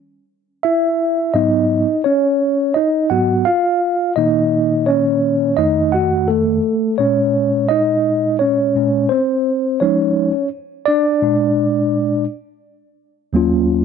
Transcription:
0.63 E4 E5
1.34 G#2 F#3 B3 D#4 D#5
2.04 C#4 C#5
2.74 D#4 D#5
3.10 G#2 F#3 B3 F#4 F#5
3.45 F4 F5
4.16 A#2 D#3 A#3 D#4 D#5
4.86 C#4 C#5
5.57 F2 D#3 A3 D#4 D#5
5.92 F#4 F#5
6.28 A3 A4
6.98 A#2 G#3 C#4 C#5
7.69 D#4 D#5
8.39 C#4 C#5
8.75 A#2 G#3 C#4
9.09 C4 C5
9.80 F3 G#3 C#4 D#4 C#5
10.86 D4 D5
11.22 A#2 G#3 D4
13.33 D#2 F#3 A#3 C#4 F4

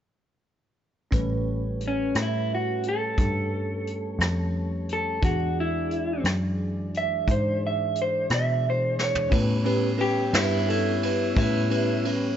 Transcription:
1.11 A1 G3 C#4 B4, kick, closed hi-hat
1.15 A3
1.80 closed hi-hat
1.88 C#4
2.15 A2, cross-stick, closed hi-hat
2.22 E4
2.55 F#4
2.83 closed hi-hat
2.89 A4
3.18 G2, kick, closed hi-hat
3.87 closed hi-hat
4.19 F2, cross-stick, closed hi-hat
4.89 A4, closed hi-hat
5.22 E2 E3 G#3 D4 F#4 G#4, kick, closed hi-hat
5.60 E4
5.91 closed hi-hat
6.24 F#2, cross-stick, closed hi-hat
6.94 E5, closed hi-hat
7.28 G#2 C5, kick, closed hi-hat
7.67 E5
7.95 closed hi-hat
8.02 C5
8.30 B2, cross-stick, closed hi-hat
8.34 E5
8.70 C5
8.99 C#5, snare
9.15 floor tom
9.30 A2 G3 C#4 G4 B4, kick, ride
9.34 B3
9.65 C#4 G4 B4, ride
9.98 C#4 G4 B4, ride
10.33 G2 C#4 E4 G4 B4, snare, ride
10.67 C#4 E4 G4 A4, ride
11.03 C#4 G4 B4, ride
11.35 A2 C#4 E4 G4 B4, kick, ride
11.70 C#4 G4 B4, ride
12.05 C#4 G4 B4, ride

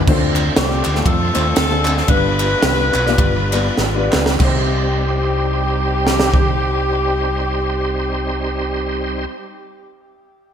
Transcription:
0.07 D2 D3 A3 C4 D4 F4 C5, kick, crash
0.36 clap, ride bell
0.55 C2 A3 C4 D4 F4 G4 C5, snare, ride bell
0.84 D2, clap, ride bell
0.94 A3 C4 D4 F4 A4, snare
1.06 F2 C4 F4 A4, kick, ride bell
1.33 D#2 A3 C4 D4 F4 C5, clap, ride bell
1.56 D2 C4 F4 A4, snare, ride bell
1.70 A3 C4 D4 F4 G#4
1.85 clap, ride bell
1.97 snare
2.06 G1 G2 G3 B3 D4 F4 B4, kick, ride bell
2.39 clap, ride bell
2.62 C2 G3 B3 D4 F4 B4, snare, ride bell
2.94 B1, clap, ride bell
3.06 G3 B3 D4 F4 D5, snare
3.18 G1, kick, ride bell
3.52 G3 B3 D4 F4 B4, clap, ride bell
3.78 G#1, snare
3.94 G3 B3 D4 F4 B4
4.12 C#2, snare, clap
4.26 snare
4.37 C2 G3 C4 D#4 G4, kick, clap, crash
4.41 C4 D#4 C5
6.07 snare
6.20 snare
6.34 kick

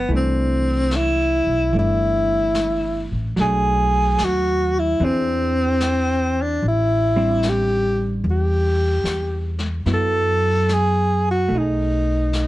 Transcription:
Already playing: B3
0.09 C2 E3 A3, brush sweep
0.14 C4 D4
0.91 snare, hi-hat pedal
0.96 E4
1.47 B1
1.73 G1 E3 A3 D4, brush sweep
1.79 E4
2.54 snare, hi-hat pedal
3.12 A1
3.36 B1 F#3 A3, brush sweep, snare
3.41 D4 G#4
4.18 D#2, snare, hi-hat pedal
4.24 F#4
4.79 E4
5.00 E2 E3 C4 D4, brush sweep
5.05 C4 G#4
5.80 snare, hi-hat pedal
6.42 D4
6.61 A1, brush sweep
6.68 E4
7.16 G3 C4 D4
7.43 snare, hi-hat pedal
7.49 G4
8.23 E2, brush sweep
8.31 G4
9.04 E2, snare, hi-hat pedal
9.59 snare
9.86 F#2 F#3 B3 E4, brush sweep, snare
9.94 A4
10.69 snare, hi-hat pedal
10.74 G#4
11.31 F#4
11.49 B1 A3, brush sweep
11.55 D#4
11.60 G#4
12.33 snare, hi-hat pedal

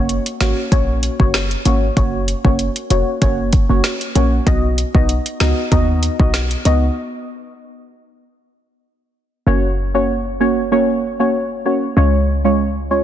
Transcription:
Already playing: F#1 A#3 C#4 F#4 C#5
0.09 closed hi-hat
0.26 closed hi-hat
0.40 G#1 A#3 C#4 F#4 C#5, snare, closed hi-hat
0.72 A#1 A#3 C#4 F#4 C#5, kick, closed hi-hat
1.03 closed hi-hat
1.20 F#1 A#3 C#4 F#4 C#5, kick
1.34 snare, closed hi-hat
1.51 closed hi-hat
1.65 G#1 A#3 C#4 F#4 C#5, closed hi-hat
1.97 F#1 A#3 C#4 F#4 C#5, kick, closed hi-hat
2.28 closed hi-hat
2.45 F#1 A#3 C#4 F#4 C#5, kick
2.59 closed hi-hat
2.76 closed hi-hat
2.90 F1 A#3 C#4 F#4 C#5, closed hi-hat
3.21 F#1 A#3 C#4 F#4 C#5, kick, closed hi-hat
3.53 kick, closed hi-hat
3.69 F#1 A#3 C#4 F#4 C#5
3.84 snare, closed hi-hat
4.01 closed hi-hat
4.15 A#1 A#3 C#4 F#4 C#5, closed hi-hat
4.47 B1 B3 D#4 F#4 D#5, kick, closed hi-hat
4.78 closed hi-hat
4.95 B1 B3 D#4 F#4 D#5, kick
5.09 closed hi-hat
5.26 closed hi-hat
5.40 C#2 B3 D#4 F#4 D#5, snare, closed hi-hat
5.71 D#2 B3 D#4 F#4 D#5, kick, closed hi-hat
6.03 closed hi-hat
6.19 B1 B3 D#4 F#4 D#5, kick
6.34 snare, closed hi-hat
6.51 closed hi-hat
6.65 C#2 B3 D#4 F#4 D#5, closed hi-hat
9.47 F#1 A#3 C#4 F#4 C#5
9.94 A#3 C#4 F#4 C#5
10.40 A#3 C#4 F#4 C#5
10.71 A#3 C#4 F#4 C#5
11.19 A#3 C#4 F#4 C#5
11.65 A#3 C#4 F#4 C#5
11.96 C#2 G#3 C#4 F4 C#5
12.44 G#3 C#4 F4 C#5
12.90 G#3 C#4 F4 C#5

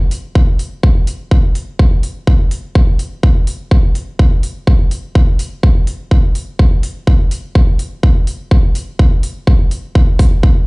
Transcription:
0.11 open hi-hat
0.35 kick
0.59 open hi-hat
0.83 kick
1.07 open hi-hat
1.31 kick
1.55 open hi-hat
1.79 kick
2.03 open hi-hat
2.27 kick
2.51 open hi-hat
2.75 kick
2.99 open hi-hat
3.23 kick
3.47 open hi-hat
3.71 kick
3.95 open hi-hat
4.19 kick
4.43 open hi-hat
4.67 kick
4.91 open hi-hat
5.15 kick
5.39 open hi-hat
5.63 kick
5.87 open hi-hat
6.11 kick
6.35 open hi-hat
6.59 kick
6.83 open hi-hat
7.07 kick
7.31 open hi-hat
7.55 kick
7.79 open hi-hat
8.03 kick
8.27 open hi-hat
8.51 kick
8.75 open hi-hat
8.99 kick
9.23 open hi-hat
9.47 kick
9.71 open hi-hat
9.95 kick
10.19 kick, open hi-hat
10.43 kick

